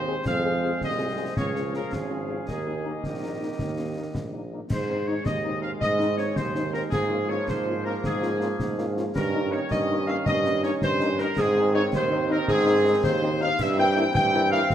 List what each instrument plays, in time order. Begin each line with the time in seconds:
Already playing: tuba D#2, trombone section G#3 C4, trumpet section C5
0.07 french horn section C4 D#4 G#4
0.25 tuba F2, trombone section G#3 C4, woodwind section G#4 C5, trumpet section F5, concert bass drum, snare, crash
0.44 french horn section C4 F4 G#4
0.63 french horn section C4 F4 G#4
0.81 tuba C2, trumpet section D#5, concert bass drum, snare
0.99 french horn section C4 F4 G#4
1.18 french horn section C4 F4 G#4
1.36 tuba C#2, trombone section F3 C#4, trumpet section C#5, woodwind section F5, concert bass drum, snare
1.55 french horn section C#4 F4 G#4, snare
1.73 french horn section C#4 F4 G#4, trumpet section A#4, snare
1.92 tuba G#1, trumpet section G#4, concert bass drum, snare
2.10 french horn section C#4 F4 G#4
2.29 french horn section C#4 F4 G#4
2.48 tuba D#2, trombone section D#3 A#3, trumpet section G#4, woodwind section A#4 D#5, concert bass drum, snare
2.65 french horn section A#3 D#4
2.85 french horn section A#3 D#4
3.04 tuba A#1, trumpet section G4, concert bass drum, snare
3.22 french horn section A#3 D#4
3.40 french horn section A#3 D#4
3.59 tuba D#2, concert bass drum, snare
3.78 french horn section A#3 D#4
3.97 french horn section A#3 D#4
4.14 tuba A#1, concert bass drum, snare
4.34 french horn section A#3 D#4
4.53 french horn section A#3 D#4
4.70 tuba G#2, trombone section D#3 G#3, trumpet section C5, woodwind section C5, concert bass drum, snare, crash
4.90 french horn section C4 D#4
5.07 french horn section C4 D#4, woodwind section C#5, trumpet section C#5
5.24 tuba D#2, trumpet section D#5, woodwind section D#5, concert bass drum, snare
5.44 french horn section C4 D#4
5.61 french horn section C4 D#4, trumpet section F5, woodwind section F5
5.80 tuba G#2, trumpet section D#5, woodwind section D#5, concert bass drum, snare
5.99 french horn section C4 D#4, snare
6.17 french horn section C4 D#4, trumpet section C#5, woodwind section C#5, snare
6.35 tuba D#2, trumpet section C5, woodwind section C5, concert bass drum, snare
6.55 french horn section C4 D#4, snare
6.72 french horn section C4 D#4, trumpet section A#4, woodwind section A#4, snare
6.90 tuba G#2, trombone section F3 A#3, trumpet section G#4, woodwind section G#4, concert bass drum, snare, crash
7.10 french horn section A#3 C#4 F4
7.28 french horn section A#3 C#4 F4, trumpet section C#5, woodwind section C#5
7.47 tuba G#2, trumpet section C5, woodwind section C5, concert bass drum, snare
7.66 french horn section A#3 C#4 F4
7.85 french horn section A#3 C#4 F4, woodwind section A#4, trumpet section A#4
8.03 tuba G#2, trumpet section G#4, woodwind section G#4, concert bass drum, snare
8.22 french horn section A#3 C#4 F4, snare
8.40 french horn section A#3 C#4 F4, snare
8.59 tuba G#2, concert bass drum, snare
8.78 french horn section A#3 C#4 F4, snare
8.97 french horn section A#3 C#4 F4, snare
9.13 tuba G2, trombone section D#3 C#4, woodwind section A#4, trumpet section A#4, concert bass drum, snare, crash
9.34 french horn section A#3 C#4 D#4
9.52 french horn section A#3 C#4 D#4, trumpet section C#5, woodwind section C#5
9.71 tuba G2, woodwind section D#5, trumpet section D#5, concert bass drum, snare
9.89 french horn section A#3 C#4 D#4
10.07 french horn section A#3 C#4 D#4, woodwind section F5, trumpet section F5
10.26 tuba G2, trumpet section D#5, woodwind section D#5, concert bass drum, snare
10.45 french horn section A#3 C#4 D#4, snare
10.63 french horn section A#3 C#4 D#4, trumpet section C#5, woodwind section C#5, snare
10.82 tuba G2, trumpet section C5, woodwind section C5, concert bass drum, snare
11.00 french horn section A#3 C#4 D#4, snare
11.18 french horn section A#3 C#4 D#4, trumpet section A#4, woodwind section A#4, snare
11.37 tuba G#2, trombone section D#3 C4, trumpet section G#4, woodwind section G#4, concert bass drum, snare, crash
11.56 french horn section C4 D#4
11.74 french horn section C4 D#4, trumpet section C#5, woodwind section C#5
11.92 tuba D#2, trumpet section C5, woodwind section C5, concert bass drum, snare
12.10 french horn section C4 D#4
12.30 french horn section C4 D#4, trumpet section A#4, woodwind section A#4
12.48 tuba G#2, woodwind section G#4, trumpet section G#4, concert bass drum, snare
12.66 french horn section C4 D#4
12.85 french horn section C4 D#4
13.04 tuba D#2, woodwind section C5, trumpet section C5, concert bass drum, snare
13.22 french horn section C4 D#4
13.41 french horn section C4 D#4, trumpet section F5, woodwind section F5
13.59 tuba G2, trombone section E3 C4, woodwind section E5, trumpet section E5, concert bass drum, snare, crash
13.77 french horn section A#3 C4 E4, trumpet section G5, woodwind section G5
13.97 french horn section A#3 C4 E4
14.14 tuba G2, trumpet section G5, woodwind section G5, concert bass drum, snare
14.34 french horn section A#3 C4 E4
14.51 french horn section A#3 C4 E4, trumpet section F5, woodwind section F5
14.70 tuba F2, trombone section F3, concert bass drum, snare